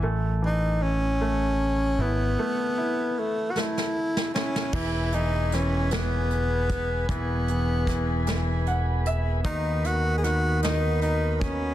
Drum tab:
CC |------------|------------|x-----------|------------|
HH |------------|------------|--x-x-x-x-x-|x-x-x-x-x-x-|
SD |------------|------oo-ooo|----o-o-----|----o-o-----|
BD |------------|------------|o---------o-|o---o-------|

CC |------------|
HH |x-x-x-x-x-x-|
SD |----o-o-----|
BD |o---------o-|